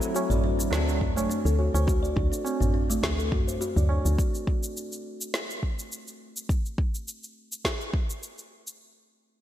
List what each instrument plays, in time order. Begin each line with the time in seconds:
Already playing: tine electric piano F#3 A3 C4 E4
0.01 kalimba C5, tabla tin, shaker
0.15 kalimba F#4, tabla na, shaker
0.30 fm bass A1, kalimba D5, tabla tin, tabla ge, shaker
0.44 kalimba D4
0.59 kalimba D4, shaker
0.71 fm bass D2, tine electric piano F#3 A3 C4 D4, kalimba C4, snare, shaker
0.88 kalimba D4, shaker
1.01 kalimba D4, kick, tabla ge
1.15 fm bass A1, tine electric piano F#3 A3 C4 D4, kalimba A3, tabla na, shaker
1.30 kalimba D4, shaker
1.45 fm bass D2, kalimba A4, tabla na, shaker
1.59 kalimba F#4, tabla tin
1.74 fm bass D2, kalimba C5, tabla na, shaker
1.87 kalimba F#4, kick, shaker
2.03 kalimba D5, shaker
2.16 fm bass D2, kalimba D4, kick
2.32 kalimba D4, tabla tin, shaker
2.45 kalimba C4, tabla na, shaker
2.60 fm bass A1, kalimba D4, tabla tin, tabla ge, shaker
2.74 kalimba D4
2.90 kalimba A3, shaker
3.03 fm bass D2, kalimba D4, kick, snare, shaker
3.19 kalimba A4, shaker
3.31 kalimba F#4, kick, tabla ge
3.47 fm bass A1, kalimba C5, tabla tin, shaker
3.61 kalimba F#4, shaker
3.76 fm bass D2, kalimba D5, tabla tin, tabla ge, shaker
3.89 kalimba D4, tabla na, tabla tin
4.05 fm bass D2, kalimba D4, shaker
4.18 kick, shaker
4.35 shaker
4.47 kick
4.63 shaker
4.77 shaker
4.92 shaker
5.21 shaker
5.34 snare, shaker
5.50 shaker
5.63 kick
5.79 shaker
5.92 shaker
6.08 shaker
6.36 shaker
6.49 kick, shaker
6.66 shaker
6.78 kick
6.95 shaker
7.08 shaker
7.23 shaker
7.52 shaker
7.65 kick, snare, shaker
7.81 shaker
7.94 kick
8.10 shaker
8.23 shaker
8.38 shaker
8.67 shaker